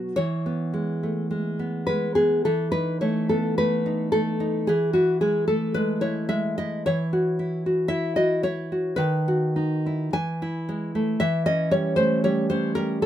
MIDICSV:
0, 0, Header, 1, 2, 480
1, 0, Start_track
1, 0, Key_signature, 4, "major"
1, 0, Tempo, 1136364
1, 76, Time_signature, 2, 2, 24, 8
1, 1513, Tempo, 1102941
1, 1993, Tempo, 1094891
1, 2953, Tempo, 1058201
1, 3913, Tempo, 1165049
1, 4393, Tempo, 1045296
1, 5726, End_track
2, 0, Start_track
2, 0, Title_t, "Nylon-string guitar"
2, 0, Program_c, 0, 24
2, 0, Note_on_c, 0, 47, 65
2, 0, Note_on_c, 0, 54, 45
2, 0, Note_on_c, 0, 59, 50
2, 0, Note_on_c, 0, 66, 45
2, 53, Note_off_c, 0, 47, 0
2, 68, Note_on_c, 0, 73, 110
2, 72, Note_off_c, 0, 54, 0
2, 73, Note_off_c, 0, 59, 0
2, 74, Note_on_c, 0, 52, 76
2, 77, Note_off_c, 0, 66, 0
2, 194, Note_on_c, 0, 59, 60
2, 310, Note_on_c, 0, 56, 55
2, 436, Note_on_c, 0, 57, 54
2, 547, Note_off_c, 0, 56, 0
2, 552, Note_on_c, 0, 56, 57
2, 668, Note_off_c, 0, 59, 0
2, 673, Note_on_c, 0, 59, 62
2, 775, Note_off_c, 0, 73, 0
2, 788, Note_on_c, 0, 71, 92
2, 791, Note_off_c, 0, 56, 0
2, 796, Note_on_c, 0, 56, 59
2, 905, Note_off_c, 0, 59, 0
2, 907, Note_off_c, 0, 71, 0
2, 909, Note_on_c, 0, 68, 94
2, 910, Note_on_c, 0, 59, 60
2, 1017, Note_off_c, 0, 52, 0
2, 1031, Note_off_c, 0, 68, 0
2, 1032, Note_off_c, 0, 59, 0
2, 1035, Note_off_c, 0, 56, 0
2, 1035, Note_off_c, 0, 57, 0
2, 1035, Note_on_c, 0, 69, 97
2, 1037, Note_on_c, 0, 52, 79
2, 1146, Note_off_c, 0, 69, 0
2, 1147, Note_on_c, 0, 63, 56
2, 1147, Note_on_c, 0, 71, 107
2, 1269, Note_off_c, 0, 71, 0
2, 1271, Note_on_c, 0, 73, 88
2, 1274, Note_on_c, 0, 57, 59
2, 1389, Note_off_c, 0, 73, 0
2, 1391, Note_on_c, 0, 69, 89
2, 1395, Note_on_c, 0, 59, 52
2, 1510, Note_off_c, 0, 69, 0
2, 1511, Note_on_c, 0, 71, 107
2, 1512, Note_off_c, 0, 57, 0
2, 1517, Note_on_c, 0, 57, 60
2, 1628, Note_off_c, 0, 63, 0
2, 1634, Note_on_c, 0, 63, 62
2, 1745, Note_off_c, 0, 71, 0
2, 1747, Note_on_c, 0, 69, 104
2, 1750, Note_off_c, 0, 57, 0
2, 1755, Note_on_c, 0, 57, 59
2, 1864, Note_off_c, 0, 63, 0
2, 1870, Note_on_c, 0, 63, 62
2, 1976, Note_off_c, 0, 52, 0
2, 1978, Note_off_c, 0, 69, 0
2, 1986, Note_off_c, 0, 59, 0
2, 1988, Note_on_c, 0, 68, 103
2, 1989, Note_off_c, 0, 63, 0
2, 1992, Note_off_c, 0, 57, 0
2, 1994, Note_on_c, 0, 52, 84
2, 2101, Note_off_c, 0, 68, 0
2, 2102, Note_on_c, 0, 66, 93
2, 2107, Note_on_c, 0, 64, 63
2, 2221, Note_off_c, 0, 66, 0
2, 2223, Note_on_c, 0, 68, 95
2, 2225, Note_on_c, 0, 56, 56
2, 2338, Note_off_c, 0, 68, 0
2, 2340, Note_on_c, 0, 69, 94
2, 2343, Note_off_c, 0, 56, 0
2, 2344, Note_on_c, 0, 57, 57
2, 2457, Note_on_c, 0, 71, 105
2, 2463, Note_off_c, 0, 69, 0
2, 2465, Note_on_c, 0, 56, 61
2, 2570, Note_off_c, 0, 64, 0
2, 2574, Note_on_c, 0, 73, 101
2, 2577, Note_on_c, 0, 64, 63
2, 2584, Note_off_c, 0, 71, 0
2, 2692, Note_off_c, 0, 56, 0
2, 2694, Note_off_c, 0, 73, 0
2, 2695, Note_on_c, 0, 76, 105
2, 2697, Note_on_c, 0, 56, 69
2, 2821, Note_off_c, 0, 64, 0
2, 2821, Note_off_c, 0, 76, 0
2, 2822, Note_on_c, 0, 75, 108
2, 2827, Note_on_c, 0, 64, 67
2, 2935, Note_off_c, 0, 52, 0
2, 2944, Note_off_c, 0, 75, 0
2, 2945, Note_off_c, 0, 56, 0
2, 2946, Note_on_c, 0, 73, 121
2, 2949, Note_off_c, 0, 64, 0
2, 2951, Note_off_c, 0, 57, 0
2, 2951, Note_on_c, 0, 52, 85
2, 3068, Note_on_c, 0, 66, 70
2, 3187, Note_on_c, 0, 64, 64
2, 3304, Note_off_c, 0, 66, 0
2, 3310, Note_on_c, 0, 66, 60
2, 3408, Note_off_c, 0, 64, 0
2, 3410, Note_off_c, 0, 73, 0
2, 3410, Note_on_c, 0, 76, 115
2, 3416, Note_on_c, 0, 64, 72
2, 3534, Note_off_c, 0, 66, 0
2, 3534, Note_off_c, 0, 76, 0
2, 3536, Note_on_c, 0, 75, 108
2, 3539, Note_on_c, 0, 66, 65
2, 3660, Note_on_c, 0, 73, 116
2, 3662, Note_off_c, 0, 64, 0
2, 3662, Note_off_c, 0, 75, 0
2, 3667, Note_on_c, 0, 64, 72
2, 3784, Note_off_c, 0, 66, 0
2, 3790, Note_on_c, 0, 66, 67
2, 3892, Note_off_c, 0, 52, 0
2, 3897, Note_off_c, 0, 73, 0
2, 3900, Note_on_c, 0, 71, 112
2, 3906, Note_on_c, 0, 51, 88
2, 3910, Note_off_c, 0, 64, 0
2, 3911, Note_off_c, 0, 66, 0
2, 4031, Note_on_c, 0, 66, 69
2, 4147, Note_on_c, 0, 63, 66
2, 4273, Note_on_c, 0, 64, 60
2, 4369, Note_off_c, 0, 71, 0
2, 4374, Note_off_c, 0, 51, 0
2, 4382, Note_off_c, 0, 64, 0
2, 4382, Note_on_c, 0, 52, 84
2, 4383, Note_on_c, 0, 80, 121
2, 4390, Note_off_c, 0, 63, 0
2, 4393, Note_off_c, 0, 66, 0
2, 4514, Note_on_c, 0, 64, 73
2, 4637, Note_on_c, 0, 56, 70
2, 4756, Note_off_c, 0, 56, 0
2, 4758, Note_on_c, 0, 57, 66
2, 4846, Note_off_c, 0, 80, 0
2, 4851, Note_off_c, 0, 52, 0
2, 4869, Note_off_c, 0, 64, 0
2, 4871, Note_on_c, 0, 76, 124
2, 4873, Note_off_c, 0, 57, 0
2, 4876, Note_on_c, 0, 52, 96
2, 4989, Note_off_c, 0, 76, 0
2, 4991, Note_on_c, 0, 75, 120
2, 4992, Note_on_c, 0, 61, 75
2, 5108, Note_on_c, 0, 55, 66
2, 5108, Note_on_c, 0, 73, 117
2, 5109, Note_off_c, 0, 75, 0
2, 5220, Note_off_c, 0, 73, 0
2, 5222, Note_on_c, 0, 72, 113
2, 5227, Note_on_c, 0, 57, 62
2, 5345, Note_off_c, 0, 72, 0
2, 5347, Note_off_c, 0, 55, 0
2, 5350, Note_on_c, 0, 73, 118
2, 5352, Note_on_c, 0, 55, 75
2, 5466, Note_off_c, 0, 73, 0
2, 5468, Note_off_c, 0, 61, 0
2, 5468, Note_on_c, 0, 72, 117
2, 5474, Note_on_c, 0, 61, 70
2, 5583, Note_off_c, 0, 72, 0
2, 5584, Note_on_c, 0, 70, 122
2, 5585, Note_off_c, 0, 55, 0
2, 5590, Note_on_c, 0, 55, 72
2, 5703, Note_off_c, 0, 61, 0
2, 5707, Note_off_c, 0, 70, 0
2, 5708, Note_on_c, 0, 61, 66
2, 5709, Note_on_c, 0, 69, 103
2, 5726, Note_off_c, 0, 52, 0
2, 5726, Note_off_c, 0, 55, 0
2, 5726, Note_off_c, 0, 57, 0
2, 5726, Note_off_c, 0, 61, 0
2, 5726, Note_off_c, 0, 69, 0
2, 5726, End_track
0, 0, End_of_file